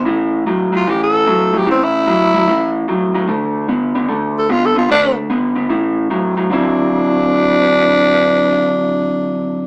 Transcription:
0.05 A2 E3
0.46 A2 F#3
0.72 A2 F#3 F4
0.87 A2 E3 G4
1.03 A4
1.27 A2 F#3
1.53 A2 F#3
1.58 G4
1.66 A2 E3
1.71 C4
1.84 E4
2.07 A2 F#3
2.34 A2 F#3
2.48 A2 E3
2.88 A2 F#3
3.14 A2 F#3
3.28 D3 A3
3.68 D3 B3
3.95 D3 B3
4.08 D3 A3
4.39 A4
4.49 D3 B3 F4
4.65 A4
4.75 D3 B3 F4
4.89 D3 A3 D4
5.30 D3 B3
5.55 D3 B3
5.69 A2 E3
6.10 A2 F#3
6.37 A2 F#3
6.50 D3 F#3 C4 D4 E4

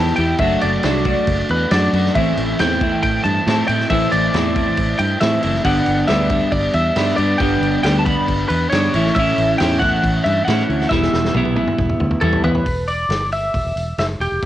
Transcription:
Already playing: E2 E3 B3 E4 G4 A5
0.07 snare
0.16 E2 E4 G4 G5, crash
0.20 B3
0.38 F#1 F#3 A3 D4 F#4 E5, kick, crash
0.61 F#1 D5, crash
0.83 C2 F#3 A3 D4 F#4, snare, crash
1.05 A3 D4 F#4, kick, crash
1.27 F#1, kick, crash
1.49 E2 B4, crash
1.71 F#2 F#3 A3 D4 F#4 D5, snare, crash
1.93 F#2 A3 D4 F#4, crash
2.06 snare
2.15 A1 A2 E3 A3 C4 E4 E5, kick, crash
2.37 A1, crash
2.59 E2 A2 E3 A3 C4 E4 G5, snare, crash
2.81 A3 C4 E4, kick, crash
3.03 A1 G5, kick, crash
3.24 G2 A5, crash
3.47 A2 E3 A3 C4 E4, snare, crash
3.68 A2 A3 C4 E4 G5, crash
3.80 snare
3.90 A1 A2 E3 A3 C4 E4 E5, kick, crash
4.12 A1 D5, crash
4.34 E2 A2 E3 A3 C4 E4, snare, crash
4.56 A3 C4 E4, kick, crash
4.77 A1, kick, crash
4.99 G2 G5, crash
5.20 A2 E3 A3 C4 E4 E5, snare, crash
5.43 F#1 A3 C4 E4, crash
5.54 snare
5.64 G1 G2 D3 G3 B3 D4 F#5, kick, crash
5.86 G1, crash
6.07 D2 G2 D3 G3 B3 D4 E5, snare, crash
6.30 G3 B3 D4, kick, crash
6.52 G1 D5, kick, crash
6.74 E2 E5, crash
6.96 G2 D3 G3 B3 D4, snare, crash
7.08 snare
7.16 G2 B3 D4 D5, crash
7.21 G3
7.38 G1 G2 D3 G3 G5, kick, crash
7.42 B3 D4
7.61 G1, crash
7.84 D2 G2 D3 G3 B3 D4 G5, snare, crash
7.99 A5
8.06 G3 B3 D4 B5, kick, crash
8.28 G1, kick, crash
8.49 E2 B4, crash
8.70 G2 D3 G3 B3 C#5, snare, crash
8.74 D4
8.94 A1 A2 E3 A3 C#4 E4, crash
9.06 snare
9.15 A1 A2 E3 A3 E5, kick, crash
9.19 C#4 E4
9.38 A1, crash
9.58 E2 A2 E3 A3 C#4 G5, snare, crash
9.62 E4
9.79 C#4 E4 F#5, kick, crash
9.84 A3
10.04 A1, kick, crash
10.24 G2 E5, crash
10.45 A2 E3 A3 F#5, snare, crash
10.49 C#4 E4
10.59 snare
10.69 D2 A3 C#4 E4, crash
10.81 snare
10.89 E1 E3 G3 B3 E4 E5, kick, snare
11.02 snare
11.13 E1, snare
11.25 snare
11.34 B1 E3 G3 B3 E4, high tom
11.45 high tom
11.56 G3 B3 E4, high tom
11.68 mid tom
11.79 E1, kick, mid tom
11.89 mid tom
12.00 D2, mid tom
12.11 mid tom
12.21 E2 E3 G3 B3 E4 A4, mid tom
12.33 floor tom
12.43 E2 G3 B3 E4 B4, floor tom
12.55 floor tom
12.66 E1, kick, open hi-hat
12.88 D5, open hi-hat
13.09 G1, snare, open hi-hat
13.32 E5, open hi-hat
13.54 E1, kick, open hi-hat
13.64 E1
13.76 E1, open hi-hat
13.98 F#1 E5, snare, open hi-hat
14.20 E1 G4, open hi-hat
14.32 E1
14.42 open hi-hat

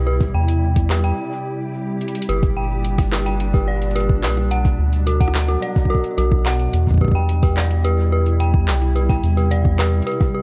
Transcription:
Already playing: C2 G3 E4 D5
0.07 C3 G4
0.20 kick, closed hi-hat
0.34 E2 G5
0.48 closed hi-hat
0.76 kick, closed hi-hat
0.90 G4, cross-stick, clap
0.95 cross-stick
0.99 cross-stick
1.04 G5, closed hi-hat
2.01 closed hi-hat
2.08 closed hi-hat
2.15 closed hi-hat
2.22 closed hi-hat
2.29 G1 A#2 G4, closed hi-hat
2.40 D4, kick, closed hi-hat
2.57 G5
2.85 closed hi-hat
2.98 kick, cross-stick, open hi-hat
3.12 G4, cross-stick, clap
3.26 G5, closed hi-hat
3.40 closed hi-hat
3.54 G4, kick
3.68 D5
3.82 closed hi-hat
3.91 closed hi-hat
3.95 G4, closed hi-hat
4.09 kick
4.23 B1 G4, clap
4.37 cross-stick, closed hi-hat
4.51 B2 F#5, closed hi-hat
4.65 kick, closed hi-hat
4.79 D2 F#3
4.93 open hi-hat
5.07 F#4, closed hi-hat
5.21 F#5, kick, open hi-hat
5.28 cross-stick
5.35 clap
5.48 F#4, closed hi-hat
5.62 D5, closed hi-hat
5.76 kick
5.85 kick
5.90 F#4
5.95 kick
6.04 closed hi-hat
6.18 B1 F#4, closed hi-hat
6.32 kick, cross-stick
6.46 F#5, clap
6.59 closed hi-hat
6.73 E2, closed hi-hat
6.87 G3, kick
6.91 kick
6.94 kick
6.98 kick
7.01 G4, kick
7.05 kick
7.08 kick
7.11 G5, kick
7.29 closed hi-hat
7.42 E4 G4, kick, open hi-hat
7.57 D5, cross-stick, clap
7.71 closed hi-hat
7.84 G4, closed hi-hat
8.12 G4
8.26 closed hi-hat
8.40 G5, closed hi-hat
8.54 kick
8.68 C2, clap
8.82 cross-stick, closed hi-hat
8.96 C3 G4, closed hi-hat
9.09 G5, kick, closed hi-hat
9.23 E2, open hi-hat
9.37 G4, open hi-hat
9.51 D5, closed hi-hat
9.65 kick
9.79 G4, clap, open hi-hat
9.93 G4, closed hi-hat
10.02 closed hi-hat
10.07 G4, closed hi-hat
10.21 kick, cross-stick
10.35 G4

